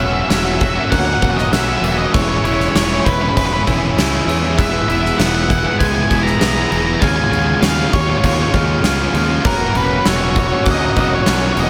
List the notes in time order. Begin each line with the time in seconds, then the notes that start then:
Already playing: E1 E3 C#4 F#4 C#5 E5 A#5 F#6
0.00 F#3 A#3 C#4 F#4, crash
0.05 E5
0.13 E5
0.21 E5
0.29 E1 E3 F#3 A#3 C#4 E5 E6, snare, crash
0.33 F#4 E5
0.45 A#3 C#4 F#4 E5
0.54 E5
0.61 F#4 E5, muted overdriven electric guitar stroke, muted distorted electric guitar stroke, kick, crash
0.69 E5
0.76 A#3 C#4 F#4 E5
0.85 E5
0.90 D2 A#3 F#5 F#6, kick, crash
1.00 F#5
1.05 A#3 C#4 F#4 F#5
1.14 F#5
1.21 E1 E3 F#3 A#3 C#4 F#4 F#5, kick, crash
1.31 F#5
1.36 D#5, snare
1.52 B1 E3 F#3 A#3 C#4 F#4 E5 F#6, snare, crash
1.60 E5
1.67 A#3 C#4 F#4 E5
1.76 E5
1.81 E1 E3 F#3 A#3 C#4 F#4 E5, crash
1.93 E5
1.98 A#3 C#4 F#4 D#5
2.13 E1 E2 E3 G#3 C#4 E4 G#4 C#5 G#5 E6, kick, crash
2.22 C#5
2.29 G#3 C#4 E4 C#5
2.38 C#5
2.44 E1 E3 G#3 C#4 C#5 E6, crash
2.48 E4
2.53 C#5
2.60 C#5, snare
2.69 C#5
2.74 E1 E3 G#3 C#4 E4 C#5, snare, crash
2.84 C#5
2.90 G#3 C#4 E4 C#5
3.00 C#5
3.04 E1 E4 B4 C#6, muted overdriven electric guitar stroke, muted distorted electric guitar stroke, kick, crash
3.13 B4
3.21 G#3 C#4 E4 B4
3.29 B4
3.36 E1 G#3 B4, kick, crash
3.46 B4
3.53 G#3 C#4 E4 B4
3.67 E1 E3 G#3 C#4 E4 E6, kick, crash
3.97 C#2 E3 G#3 C#4, snare, crash
4.01 E4
4.14 G#3 C#4 E4
4.27 E2 E3 G#3 C#4 E6, crash
4.31 E4
4.43 G#3 C#4 E4
4.57 E1 E2 E3 G#3 B3 E4 B4 E5 F#6, kick, crash
4.72 G#3 B3 E4
4.88 E1 E3 G#3 B3 E4 E5, crash
5.05 snare
5.18 E1 E3 G#3 B3 E4 F#5 E6, snare, crash
5.26 F#5
5.34 G#3 B3 E4 F#5
5.43 F#5
5.49 E4 F#5, muted distorted electric guitar stroke, muted overdriven electric guitar stroke, kick, crash
5.59 F#5
5.64 G#3 B3 E4 F#5
5.79 C#2 G#3 G#5 G#6, kick, crash
5.86 G#5
5.94 G#3 B3 E4 G#5
6.03 G#5
6.10 E1 E3 G#3 B3 E4 G#5, kick, crash
6.19 G#5
6.23 A#5, snare
6.31 A#5
6.39 B1 E3 G#3 B3 E4 A#5 G#6, snare, crash
6.47 A#5
6.55 G#3 B3 E4 A#5
6.62 A#5
6.70 E1 E3 G#3 B3 E4 A#5, crash
6.78 A#5
6.86 G#3 B3 E4 A#5
6.95 A#5
6.99 D#2 E2 C#3 G#3 B3 C#4 C#5 F5 G#5 F6, kick, crash
7.04 F4
7.08 G#5
7.16 G#3 B3 C#4 F4 G#5
7.24 G#5
7.31 D#2 C#3 G#3 B3 C#4 F4 G#5 F6, crash
7.39 G#5
7.47 G#5
7.55 G#5
7.61 D#2 C#3 G#3 B3 C#4 F5, snare, crash
7.65 F4
7.79 G#3 B3 F4
7.92 D#2 C#5 C#6, muted distorted electric guitar stroke, muted overdriven electric guitar stroke, kick, crash
8.01 C#5
8.07 G#3 B3 C#4 F4 C#5
8.18 C#5
8.24 D#2 G#3 C#5, kick, crash
8.34 F4 C#5
8.39 G#3 C#4 C#5
8.52 D#2 C#3 G#3 C#4 F4 F6, kick, crash
8.56 B3
8.82 C#2 C#3 G#3 C#4 F4, snare, crash
8.87 B3
8.98 G#3 B3 C#4 F4
9.14 D#2 C#3 F3 G#3 B3 C#4 F4 F6, crash
9.29 G#3 B3 C#4 F4
9.44 E1 E3 F#3 A#3 C#4 E4 F#4 A#4 A#5 F#6, kick, crash
9.58 A#3 C#4 F#4
9.74 E1 E3 F#3 A#3 C#4 F#4 B4, crash
10.05 E1 E3 F#3 A#3 C#4 F#4 C#5 E6, snare, crash
10.16 C#5
10.21 A#3 C#4 F#4 C#5
10.30 C#5
10.35 F#4, muted distorted electric guitar stroke, muted overdriven electric guitar stroke, kick, crash
10.39 C#5
10.48 C#4 F#4 C#5
10.53 A#3 C#5
10.65 D2 A#3 F#6, kick, crash
10.71 D#5
10.79 C#4 F#4 D#5
10.84 A#3 D#5
10.93 E1 E3 F#3 D#5, kick, crash
10.98 A#3 C#4 F#4 D#5
11.08 D#5
11.15 C#5
11.22 C#5
11.26 B1 E3 F#3 A#3 C#4 F#4 C#5 F#6, snare, crash
11.39 F#4 C#5
11.43 A#3 C#4 C#5
11.53 C#5
11.57 E1 E3 F#3 A#3 C#4 F#4 D#5, crash